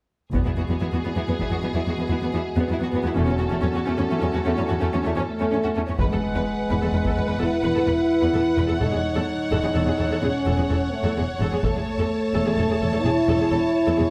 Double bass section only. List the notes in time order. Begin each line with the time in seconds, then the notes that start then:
0.34 E1
3.16 E1
5.99 E1
6.70 E1
6.93 E1
7.17 E1
7.40 E1
7.64 E1
7.88 E1
8.35 E1
8.58 E1
8.82 E1
9.52 E1
9.76 E1
10.01 E1
10.24 E1
10.48 E1
10.71 E1
11.18 E1
11.40 E1
11.64 E1
12.34 E1
12.58 E1
12.82 E1
13.06 E1
13.28 E1
13.51 E1
13.98 E1